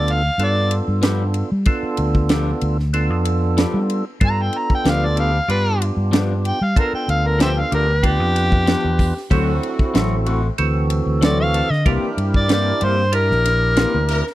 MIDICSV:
0, 0, Header, 1, 8, 480
1, 0, Start_track
1, 0, Tempo, 637078
1, 1252, Time_signature, 4, 2, 24, 8
1, 10804, End_track
2, 0, Start_track
2, 0, Title_t, "Harmonica"
2, 0, Program_c, 0, 22
2, 0, Note_on_c, 0, 74, 87
2, 93, Note_on_c, 0, 77, 98
2, 104, Note_off_c, 0, 74, 0
2, 329, Note_on_c, 0, 74, 98
2, 340, Note_off_c, 0, 77, 0
2, 544, Note_off_c, 0, 74, 0
2, 3210, Note_on_c, 0, 82, 111
2, 3330, Note_on_c, 0, 79, 94
2, 3342, Note_off_c, 0, 82, 0
2, 3447, Note_on_c, 0, 82, 82
2, 3459, Note_off_c, 0, 79, 0
2, 3548, Note_off_c, 0, 82, 0
2, 3578, Note_on_c, 0, 79, 95
2, 3694, Note_on_c, 0, 77, 91
2, 3705, Note_off_c, 0, 79, 0
2, 3808, Note_on_c, 0, 74, 87
2, 3819, Note_off_c, 0, 77, 0
2, 3900, Note_off_c, 0, 74, 0
2, 3916, Note_on_c, 0, 77, 90
2, 4137, Note_off_c, 0, 77, 0
2, 4148, Note_on_c, 0, 71, 103
2, 4373, Note_off_c, 0, 71, 0
2, 4877, Note_on_c, 0, 79, 105
2, 4999, Note_on_c, 0, 77, 90
2, 5010, Note_off_c, 0, 79, 0
2, 5096, Note_off_c, 0, 77, 0
2, 5116, Note_on_c, 0, 70, 87
2, 5222, Note_off_c, 0, 70, 0
2, 5235, Note_on_c, 0, 79, 82
2, 5333, Note_off_c, 0, 79, 0
2, 5349, Note_on_c, 0, 77, 96
2, 5480, Note_on_c, 0, 70, 91
2, 5491, Note_off_c, 0, 77, 0
2, 5576, Note_off_c, 0, 70, 0
2, 5592, Note_on_c, 0, 72, 67
2, 5592, Note_on_c, 0, 76, 67
2, 5592, Note_on_c, 0, 79, 96
2, 5643, Note_off_c, 0, 76, 0
2, 5659, Note_off_c, 0, 72, 0
2, 5721, Note_on_c, 0, 77, 90
2, 5732, Note_off_c, 0, 79, 0
2, 5816, Note_off_c, 0, 77, 0
2, 5838, Note_on_c, 0, 70, 96
2, 6071, Note_on_c, 0, 67, 116
2, 6082, Note_off_c, 0, 70, 0
2, 6993, Note_off_c, 0, 67, 0
2, 8469, Note_on_c, 0, 74, 87
2, 8579, Note_off_c, 0, 74, 0
2, 8589, Note_on_c, 0, 77, 99
2, 8830, Note_off_c, 0, 77, 0
2, 8830, Note_on_c, 0, 75, 99
2, 8927, Note_off_c, 0, 75, 0
2, 9317, Note_on_c, 0, 74, 100
2, 9414, Note_off_c, 0, 74, 0
2, 9442, Note_on_c, 0, 74, 90
2, 9673, Note_on_c, 0, 72, 99
2, 9684, Note_off_c, 0, 74, 0
2, 9896, Note_off_c, 0, 72, 0
2, 9907, Note_on_c, 0, 70, 120
2, 10804, Note_off_c, 0, 70, 0
2, 10804, End_track
3, 0, Start_track
3, 0, Title_t, "Tonewheel organ"
3, 0, Program_c, 1, 16
3, 0, Note_on_c, 1, 59, 74
3, 0, Note_on_c, 1, 62, 66
3, 0, Note_on_c, 1, 65, 67
3, 0, Note_on_c, 1, 69, 86
3, 168, Note_off_c, 1, 62, 0
3, 169, Note_off_c, 1, 65, 0
3, 169, Note_off_c, 1, 69, 0
3, 170, Note_off_c, 1, 59, 0
3, 297, Note_on_c, 1, 59, 73
3, 297, Note_on_c, 1, 69, 76
3, 300, Note_on_c, 1, 62, 68
3, 300, Note_on_c, 1, 65, 63
3, 1132, Note_off_c, 1, 59, 0
3, 1133, Note_off_c, 1, 69, 0
3, 1134, Note_off_c, 1, 62, 0
3, 1134, Note_off_c, 1, 65, 0
3, 1251, Note_on_c, 1, 65, 84
3, 1253, Note_on_c, 1, 69, 102
3, 1254, Note_on_c, 1, 59, 89
3, 1255, Note_on_c, 1, 62, 87
3, 2090, Note_off_c, 1, 65, 0
3, 2090, Note_off_c, 1, 69, 0
3, 2091, Note_off_c, 1, 59, 0
3, 2091, Note_off_c, 1, 62, 0
3, 2210, Note_on_c, 1, 59, 89
3, 2213, Note_on_c, 1, 69, 96
3, 2215, Note_on_c, 1, 62, 82
3, 2215, Note_on_c, 1, 65, 81
3, 3049, Note_off_c, 1, 59, 0
3, 3051, Note_off_c, 1, 69, 0
3, 3052, Note_off_c, 1, 62, 0
3, 3052, Note_off_c, 1, 65, 0
3, 3168, Note_on_c, 1, 65, 75
3, 3170, Note_on_c, 1, 62, 71
3, 3172, Note_on_c, 1, 69, 88
3, 3173, Note_on_c, 1, 59, 81
3, 4008, Note_off_c, 1, 65, 0
3, 4009, Note_off_c, 1, 62, 0
3, 4010, Note_off_c, 1, 59, 0
3, 4010, Note_off_c, 1, 69, 0
3, 4131, Note_on_c, 1, 62, 67
3, 4133, Note_on_c, 1, 65, 66
3, 4133, Note_on_c, 1, 67, 78
3, 4134, Note_on_c, 1, 59, 74
3, 4970, Note_off_c, 1, 62, 0
3, 4970, Note_off_c, 1, 65, 0
3, 4971, Note_off_c, 1, 59, 0
3, 4971, Note_off_c, 1, 67, 0
3, 5096, Note_on_c, 1, 62, 71
3, 5097, Note_on_c, 1, 65, 76
3, 5099, Note_on_c, 1, 69, 83
3, 5100, Note_on_c, 1, 59, 77
3, 5932, Note_off_c, 1, 62, 0
3, 5933, Note_off_c, 1, 65, 0
3, 5933, Note_off_c, 1, 69, 0
3, 5934, Note_off_c, 1, 59, 0
3, 6051, Note_on_c, 1, 59, 72
3, 6051, Note_on_c, 1, 62, 68
3, 6051, Note_on_c, 1, 65, 67
3, 6052, Note_on_c, 1, 71, 83
3, 6889, Note_off_c, 1, 59, 0
3, 6889, Note_off_c, 1, 62, 0
3, 6889, Note_off_c, 1, 65, 0
3, 6890, Note_off_c, 1, 71, 0
3, 7014, Note_on_c, 1, 64, 87
3, 7016, Note_on_c, 1, 60, 91
3, 7016, Note_on_c, 1, 69, 95
3, 7017, Note_on_c, 1, 66, 78
3, 7851, Note_off_c, 1, 64, 0
3, 7852, Note_off_c, 1, 60, 0
3, 7852, Note_off_c, 1, 66, 0
3, 7852, Note_off_c, 1, 69, 0
3, 7973, Note_on_c, 1, 69, 104
3, 7974, Note_on_c, 1, 60, 86
3, 7975, Note_on_c, 1, 52, 78
3, 7975, Note_on_c, 1, 66, 79
3, 8811, Note_off_c, 1, 60, 0
3, 8811, Note_off_c, 1, 66, 0
3, 8811, Note_off_c, 1, 69, 0
3, 8812, Note_off_c, 1, 52, 0
3, 8934, Note_on_c, 1, 67, 71
3, 8935, Note_on_c, 1, 64, 75
3, 8935, Note_on_c, 1, 70, 93
3, 8936, Note_on_c, 1, 62, 78
3, 9771, Note_off_c, 1, 67, 0
3, 9772, Note_off_c, 1, 62, 0
3, 9772, Note_off_c, 1, 64, 0
3, 9772, Note_off_c, 1, 70, 0
3, 9887, Note_on_c, 1, 70, 84
3, 9888, Note_on_c, 1, 62, 73
3, 9889, Note_on_c, 1, 67, 67
3, 9890, Note_on_c, 1, 64, 67
3, 10728, Note_off_c, 1, 62, 0
3, 10728, Note_off_c, 1, 70, 0
3, 10729, Note_off_c, 1, 67, 0
3, 10730, Note_off_c, 1, 64, 0
3, 10804, End_track
4, 0, Start_track
4, 0, Title_t, "Clean electric guitar"
4, 0, Program_c, 2, 27
4, 768, Note_on_c, 2, 53, 82
4, 772, Note_on_c, 2, 59, 94
4, 775, Note_on_c, 2, 62, 96
4, 779, Note_on_c, 2, 67, 93
4, 919, Note_off_c, 2, 53, 0
4, 921, Note_off_c, 2, 59, 0
4, 922, Note_off_c, 2, 62, 0
4, 924, Note_off_c, 2, 67, 0
4, 1730, Note_on_c, 2, 53, 81
4, 1735, Note_on_c, 2, 59, 93
4, 1739, Note_on_c, 2, 62, 91
4, 1742, Note_on_c, 2, 67, 87
4, 1880, Note_off_c, 2, 53, 0
4, 1882, Note_off_c, 2, 59, 0
4, 1885, Note_off_c, 2, 62, 0
4, 1886, Note_off_c, 2, 67, 0
4, 2693, Note_on_c, 2, 53, 87
4, 2695, Note_on_c, 2, 59, 87
4, 2701, Note_on_c, 2, 62, 88
4, 2705, Note_on_c, 2, 67, 91
4, 2841, Note_off_c, 2, 53, 0
4, 2843, Note_off_c, 2, 59, 0
4, 2845, Note_off_c, 2, 62, 0
4, 2847, Note_off_c, 2, 67, 0
4, 3651, Note_on_c, 2, 53, 75
4, 3656, Note_on_c, 2, 59, 83
4, 3660, Note_on_c, 2, 62, 85
4, 3664, Note_on_c, 2, 67, 78
4, 3801, Note_off_c, 2, 53, 0
4, 3803, Note_off_c, 2, 59, 0
4, 3805, Note_off_c, 2, 62, 0
4, 3807, Note_off_c, 2, 67, 0
4, 3892, Note_on_c, 2, 67, 52
4, 3901, Note_on_c, 2, 62, 44
4, 3907, Note_on_c, 2, 59, 43
4, 4041, Note_off_c, 2, 67, 0
4, 4046, Note_off_c, 2, 62, 0
4, 4048, Note_off_c, 2, 59, 0
4, 4608, Note_on_c, 2, 53, 81
4, 4613, Note_on_c, 2, 59, 95
4, 4614, Note_on_c, 2, 62, 94
4, 4618, Note_on_c, 2, 67, 88
4, 4759, Note_off_c, 2, 53, 0
4, 4762, Note_off_c, 2, 59, 0
4, 4762, Note_off_c, 2, 62, 0
4, 4764, Note_off_c, 2, 67, 0
4, 5568, Note_on_c, 2, 53, 77
4, 5573, Note_on_c, 2, 59, 77
4, 5576, Note_on_c, 2, 62, 91
4, 5579, Note_on_c, 2, 67, 81
4, 5719, Note_off_c, 2, 53, 0
4, 5722, Note_off_c, 2, 59, 0
4, 5723, Note_off_c, 2, 62, 0
4, 5724, Note_off_c, 2, 67, 0
4, 5814, Note_on_c, 2, 67, 57
4, 5821, Note_on_c, 2, 62, 45
4, 5826, Note_on_c, 2, 59, 45
4, 5962, Note_off_c, 2, 67, 0
4, 5965, Note_off_c, 2, 62, 0
4, 5968, Note_off_c, 2, 59, 0
4, 6529, Note_on_c, 2, 53, 70
4, 6535, Note_on_c, 2, 59, 72
4, 6538, Note_on_c, 2, 62, 83
4, 6542, Note_on_c, 2, 67, 79
4, 6679, Note_off_c, 2, 53, 0
4, 6682, Note_off_c, 2, 59, 0
4, 6684, Note_off_c, 2, 62, 0
4, 6686, Note_off_c, 2, 67, 0
4, 7011, Note_on_c, 2, 54, 85
4, 7013, Note_on_c, 2, 57, 84
4, 7015, Note_on_c, 2, 60, 90
4, 7020, Note_on_c, 2, 66, 85
4, 7160, Note_off_c, 2, 54, 0
4, 7162, Note_off_c, 2, 57, 0
4, 7162, Note_off_c, 2, 60, 0
4, 7165, Note_off_c, 2, 66, 0
4, 7490, Note_on_c, 2, 54, 86
4, 7493, Note_on_c, 2, 57, 83
4, 7497, Note_on_c, 2, 60, 94
4, 7499, Note_on_c, 2, 66, 89
4, 7640, Note_off_c, 2, 54, 0
4, 7641, Note_off_c, 2, 57, 0
4, 7643, Note_off_c, 2, 60, 0
4, 7644, Note_off_c, 2, 66, 0
4, 7732, Note_on_c, 2, 66, 62
4, 7740, Note_on_c, 2, 60, 53
4, 7745, Note_on_c, 2, 57, 47
4, 7881, Note_off_c, 2, 66, 0
4, 7885, Note_off_c, 2, 60, 0
4, 7887, Note_off_c, 2, 57, 0
4, 8449, Note_on_c, 2, 54, 84
4, 8455, Note_on_c, 2, 57, 82
4, 8456, Note_on_c, 2, 60, 76
4, 8461, Note_on_c, 2, 66, 79
4, 8600, Note_off_c, 2, 54, 0
4, 8602, Note_off_c, 2, 57, 0
4, 8603, Note_off_c, 2, 60, 0
4, 8605, Note_off_c, 2, 66, 0
4, 8933, Note_on_c, 2, 52, 75
4, 8935, Note_on_c, 2, 58, 81
4, 8941, Note_on_c, 2, 60, 78
4, 8943, Note_on_c, 2, 67, 84
4, 9082, Note_off_c, 2, 52, 0
4, 9083, Note_off_c, 2, 58, 0
4, 9086, Note_off_c, 2, 60, 0
4, 9087, Note_off_c, 2, 67, 0
4, 9408, Note_on_c, 2, 52, 72
4, 9413, Note_on_c, 2, 58, 83
4, 9417, Note_on_c, 2, 60, 83
4, 9420, Note_on_c, 2, 67, 95
4, 9559, Note_off_c, 2, 52, 0
4, 9562, Note_off_c, 2, 58, 0
4, 9564, Note_off_c, 2, 60, 0
4, 9565, Note_off_c, 2, 67, 0
4, 9648, Note_on_c, 2, 67, 52
4, 9657, Note_on_c, 2, 60, 50
4, 9663, Note_on_c, 2, 58, 38
4, 9799, Note_off_c, 2, 67, 0
4, 9804, Note_off_c, 2, 60, 0
4, 9807, Note_off_c, 2, 58, 0
4, 10372, Note_on_c, 2, 52, 79
4, 10376, Note_on_c, 2, 58, 83
4, 10379, Note_on_c, 2, 60, 85
4, 10381, Note_on_c, 2, 67, 86
4, 10521, Note_off_c, 2, 52, 0
4, 10523, Note_off_c, 2, 58, 0
4, 10525, Note_off_c, 2, 60, 0
4, 10526, Note_off_c, 2, 67, 0
4, 10804, End_track
5, 0, Start_track
5, 0, Title_t, "Horn section"
5, 0, Program_c, 3, 61
5, 7010, Note_on_c, 3, 60, 81
5, 7012, Note_on_c, 3, 57, 79
5, 7016, Note_on_c, 3, 62, 76
5, 7020, Note_on_c, 3, 54, 92
5, 7020, Note_on_c, 3, 66, 100
5, 7491, Note_off_c, 3, 60, 0
5, 7492, Note_off_c, 3, 57, 0
5, 7494, Note_off_c, 3, 62, 0
5, 7496, Note_off_c, 3, 54, 0
5, 7496, Note_off_c, 3, 66, 0
5, 8687, Note_on_c, 3, 57, 72
5, 8692, Note_on_c, 3, 62, 67
5, 8693, Note_on_c, 3, 60, 65
5, 8697, Note_on_c, 3, 69, 79
5, 8807, Note_off_c, 3, 57, 0
5, 8813, Note_off_c, 3, 60, 0
5, 8813, Note_off_c, 3, 62, 0
5, 8817, Note_off_c, 3, 69, 0
5, 8935, Note_on_c, 3, 58, 69
5, 8935, Note_on_c, 3, 60, 65
5, 8940, Note_on_c, 3, 64, 68
5, 8945, Note_on_c, 3, 55, 76
5, 8945, Note_on_c, 3, 67, 83
5, 9414, Note_off_c, 3, 58, 0
5, 9414, Note_off_c, 3, 60, 0
5, 9416, Note_off_c, 3, 64, 0
5, 9419, Note_off_c, 3, 55, 0
5, 9419, Note_off_c, 3, 67, 0
5, 10608, Note_on_c, 3, 58, 93
5, 10610, Note_on_c, 3, 60, 91
5, 10615, Note_on_c, 3, 64, 86
5, 10618, Note_on_c, 3, 70, 101
5, 10729, Note_off_c, 3, 58, 0
5, 10731, Note_off_c, 3, 60, 0
5, 10735, Note_off_c, 3, 64, 0
5, 10738, Note_off_c, 3, 70, 0
5, 10804, End_track
6, 0, Start_track
6, 0, Title_t, "Fingered electric bass"
6, 0, Program_c, 4, 33
6, 0, Note_on_c, 4, 38, 80
6, 216, Note_off_c, 4, 38, 0
6, 287, Note_on_c, 4, 43, 92
6, 599, Note_off_c, 4, 43, 0
6, 663, Note_on_c, 4, 43, 85
6, 1067, Note_off_c, 4, 43, 0
6, 1143, Note_on_c, 4, 55, 78
6, 1238, Note_off_c, 4, 55, 0
6, 1495, Note_on_c, 4, 38, 80
6, 1900, Note_off_c, 4, 38, 0
6, 1974, Note_on_c, 4, 38, 108
6, 2337, Note_off_c, 4, 38, 0
6, 2337, Note_on_c, 4, 41, 96
6, 2744, Note_off_c, 4, 41, 0
6, 2817, Note_on_c, 4, 55, 88
6, 3021, Note_off_c, 4, 55, 0
6, 3174, Note_on_c, 4, 43, 103
6, 3377, Note_off_c, 4, 43, 0
6, 3655, Note_on_c, 4, 38, 88
6, 4061, Note_off_c, 4, 38, 0
6, 4132, Note_on_c, 4, 43, 88
6, 4442, Note_off_c, 4, 43, 0
6, 4496, Note_on_c, 4, 43, 82
6, 4903, Note_off_c, 4, 43, 0
6, 4983, Note_on_c, 4, 55, 77
6, 5078, Note_off_c, 4, 55, 0
6, 5337, Note_on_c, 4, 38, 83
6, 5741, Note_off_c, 4, 38, 0
6, 5817, Note_on_c, 4, 38, 102
6, 6178, Note_off_c, 4, 38, 0
6, 6178, Note_on_c, 4, 41, 87
6, 6584, Note_off_c, 4, 41, 0
6, 6664, Note_on_c, 4, 40, 80
6, 6865, Note_off_c, 4, 40, 0
6, 7014, Note_on_c, 4, 38, 104
6, 7216, Note_off_c, 4, 38, 0
6, 7497, Note_on_c, 4, 33, 89
6, 7901, Note_off_c, 4, 33, 0
6, 7978, Note_on_c, 4, 38, 95
6, 8285, Note_off_c, 4, 38, 0
6, 8336, Note_on_c, 4, 38, 82
6, 8743, Note_off_c, 4, 38, 0
6, 8816, Note_on_c, 4, 50, 77
6, 8914, Note_off_c, 4, 50, 0
6, 8934, Note_on_c, 4, 36, 112
6, 9040, Note_off_c, 4, 36, 0
6, 9172, Note_on_c, 4, 43, 90
6, 9579, Note_off_c, 4, 43, 0
6, 9658, Note_on_c, 4, 43, 109
6, 10025, Note_on_c, 4, 34, 88
6, 10036, Note_off_c, 4, 43, 0
6, 10429, Note_off_c, 4, 34, 0
6, 10506, Note_on_c, 4, 38, 82
6, 10706, Note_off_c, 4, 38, 0
6, 10804, End_track
7, 0, Start_track
7, 0, Title_t, "Muted fingered electric bass strokes"
7, 1379, Note_on_c, 9, 29, 38
7, 1454, Note_off_c, 9, 29, 0
7, 5224, Note_on_c, 9, 29, 37
7, 5299, Note_off_c, 9, 29, 0
7, 10804, End_track
8, 0, Start_track
8, 0, Title_t, "Drums"
8, 59, Note_on_c, 9, 53, 65
8, 134, Note_off_c, 9, 53, 0
8, 296, Note_on_c, 9, 53, 62
8, 371, Note_off_c, 9, 53, 0
8, 533, Note_on_c, 9, 53, 70
8, 608, Note_off_c, 9, 53, 0
8, 772, Note_on_c, 9, 53, 63
8, 779, Note_on_c, 9, 38, 101
8, 847, Note_off_c, 9, 53, 0
8, 855, Note_off_c, 9, 38, 0
8, 1008, Note_on_c, 9, 53, 64
8, 1084, Note_off_c, 9, 53, 0
8, 1246, Note_on_c, 9, 53, 61
8, 1253, Note_on_c, 9, 36, 96
8, 1321, Note_off_c, 9, 53, 0
8, 1329, Note_off_c, 9, 36, 0
8, 1484, Note_on_c, 9, 53, 69
8, 1560, Note_off_c, 9, 53, 0
8, 1618, Note_on_c, 9, 36, 77
8, 1693, Note_off_c, 9, 36, 0
8, 1726, Note_on_c, 9, 53, 66
8, 1733, Note_on_c, 9, 38, 115
8, 1801, Note_off_c, 9, 53, 0
8, 1809, Note_off_c, 9, 38, 0
8, 1968, Note_on_c, 9, 53, 61
8, 2044, Note_off_c, 9, 53, 0
8, 2105, Note_on_c, 9, 38, 35
8, 2180, Note_off_c, 9, 38, 0
8, 2211, Note_on_c, 9, 53, 60
8, 2286, Note_off_c, 9, 53, 0
8, 2450, Note_on_c, 9, 53, 66
8, 2525, Note_off_c, 9, 53, 0
8, 2694, Note_on_c, 9, 53, 58
8, 2701, Note_on_c, 9, 38, 106
8, 2769, Note_off_c, 9, 53, 0
8, 2776, Note_off_c, 9, 38, 0
8, 2935, Note_on_c, 9, 53, 62
8, 3010, Note_off_c, 9, 53, 0
8, 3169, Note_on_c, 9, 53, 58
8, 3174, Note_on_c, 9, 36, 102
8, 3245, Note_off_c, 9, 53, 0
8, 3249, Note_off_c, 9, 36, 0
8, 3410, Note_on_c, 9, 53, 56
8, 3485, Note_off_c, 9, 53, 0
8, 3540, Note_on_c, 9, 36, 83
8, 3616, Note_off_c, 9, 36, 0
8, 3656, Note_on_c, 9, 53, 58
8, 3664, Note_on_c, 9, 38, 110
8, 3731, Note_off_c, 9, 53, 0
8, 3739, Note_off_c, 9, 38, 0
8, 3894, Note_on_c, 9, 53, 66
8, 3970, Note_off_c, 9, 53, 0
8, 4139, Note_on_c, 9, 53, 64
8, 4215, Note_off_c, 9, 53, 0
8, 4381, Note_on_c, 9, 53, 72
8, 4457, Note_off_c, 9, 53, 0
8, 4618, Note_on_c, 9, 53, 60
8, 4626, Note_on_c, 9, 38, 106
8, 4694, Note_off_c, 9, 53, 0
8, 4701, Note_off_c, 9, 38, 0
8, 4859, Note_on_c, 9, 53, 67
8, 4935, Note_off_c, 9, 53, 0
8, 5096, Note_on_c, 9, 36, 103
8, 5099, Note_on_c, 9, 53, 65
8, 5172, Note_off_c, 9, 36, 0
8, 5174, Note_off_c, 9, 53, 0
8, 5340, Note_on_c, 9, 53, 63
8, 5416, Note_off_c, 9, 53, 0
8, 5575, Note_on_c, 9, 53, 62
8, 5583, Note_on_c, 9, 38, 113
8, 5651, Note_off_c, 9, 53, 0
8, 5658, Note_off_c, 9, 38, 0
8, 5817, Note_on_c, 9, 53, 69
8, 5892, Note_off_c, 9, 53, 0
8, 6054, Note_on_c, 9, 36, 81
8, 6054, Note_on_c, 9, 53, 67
8, 6129, Note_off_c, 9, 36, 0
8, 6129, Note_off_c, 9, 53, 0
8, 6297, Note_on_c, 9, 53, 72
8, 6305, Note_on_c, 9, 38, 41
8, 6373, Note_off_c, 9, 53, 0
8, 6380, Note_off_c, 9, 38, 0
8, 6419, Note_on_c, 9, 36, 83
8, 6495, Note_off_c, 9, 36, 0
8, 6533, Note_on_c, 9, 53, 65
8, 6541, Note_on_c, 9, 38, 100
8, 6609, Note_off_c, 9, 53, 0
8, 6616, Note_off_c, 9, 38, 0
8, 6774, Note_on_c, 9, 36, 81
8, 6776, Note_on_c, 9, 46, 83
8, 6849, Note_off_c, 9, 36, 0
8, 6851, Note_off_c, 9, 46, 0
8, 6910, Note_on_c, 9, 38, 34
8, 6985, Note_off_c, 9, 38, 0
8, 7014, Note_on_c, 9, 36, 105
8, 7015, Note_on_c, 9, 53, 58
8, 7089, Note_off_c, 9, 36, 0
8, 7090, Note_off_c, 9, 53, 0
8, 7257, Note_on_c, 9, 53, 56
8, 7332, Note_off_c, 9, 53, 0
8, 7379, Note_on_c, 9, 36, 83
8, 7454, Note_off_c, 9, 36, 0
8, 7494, Note_on_c, 9, 53, 60
8, 7502, Note_on_c, 9, 38, 122
8, 7569, Note_off_c, 9, 53, 0
8, 7577, Note_off_c, 9, 38, 0
8, 7732, Note_on_c, 9, 53, 62
8, 7808, Note_off_c, 9, 53, 0
8, 7971, Note_on_c, 9, 53, 59
8, 8047, Note_off_c, 9, 53, 0
8, 8211, Note_on_c, 9, 53, 71
8, 8287, Note_off_c, 9, 53, 0
8, 8455, Note_on_c, 9, 53, 63
8, 8463, Note_on_c, 9, 38, 115
8, 8530, Note_off_c, 9, 53, 0
8, 8538, Note_off_c, 9, 38, 0
8, 8695, Note_on_c, 9, 53, 70
8, 8770, Note_off_c, 9, 53, 0
8, 8835, Note_on_c, 9, 38, 37
8, 8911, Note_off_c, 9, 38, 0
8, 8934, Note_on_c, 9, 53, 57
8, 8935, Note_on_c, 9, 36, 105
8, 9009, Note_off_c, 9, 53, 0
8, 9010, Note_off_c, 9, 36, 0
8, 9175, Note_on_c, 9, 53, 63
8, 9251, Note_off_c, 9, 53, 0
8, 9300, Note_on_c, 9, 36, 84
8, 9375, Note_off_c, 9, 36, 0
8, 9411, Note_on_c, 9, 53, 70
8, 9418, Note_on_c, 9, 38, 115
8, 9486, Note_off_c, 9, 53, 0
8, 9493, Note_off_c, 9, 38, 0
8, 9649, Note_on_c, 9, 53, 70
8, 9725, Note_off_c, 9, 53, 0
8, 9889, Note_on_c, 9, 53, 69
8, 9964, Note_off_c, 9, 53, 0
8, 10028, Note_on_c, 9, 38, 33
8, 10104, Note_off_c, 9, 38, 0
8, 10136, Note_on_c, 9, 53, 74
8, 10144, Note_on_c, 9, 38, 37
8, 10212, Note_off_c, 9, 53, 0
8, 10219, Note_off_c, 9, 38, 0
8, 10371, Note_on_c, 9, 53, 62
8, 10378, Note_on_c, 9, 38, 107
8, 10446, Note_off_c, 9, 53, 0
8, 10454, Note_off_c, 9, 38, 0
8, 10611, Note_on_c, 9, 53, 67
8, 10686, Note_off_c, 9, 53, 0
8, 10749, Note_on_c, 9, 38, 36
8, 10804, Note_off_c, 9, 38, 0
8, 10804, End_track
0, 0, End_of_file